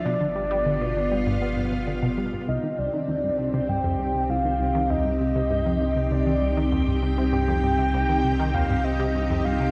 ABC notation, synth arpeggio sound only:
X:1
M:4/4
L:1/16
Q:1/4=99
K:Gdor
V:1 name="Synth arpeggio sound" clef=bass
=B,, D, G, G, D, B,, D, G, G,, =B, G,, G,, D, B,, G, G,, | [K:Cm] C,, E, C,, E, E,, G,, C, C, G,, F,, G,, C, C,, E, C,, E, | E,, G,, C, C, G,, F,, G,, C, C,, E, C,, E, E,, G,, C, C, | G,, F,, G,, C, C,, E, C,, E, E,, G,, C, C, G,, F,, G,, C, |]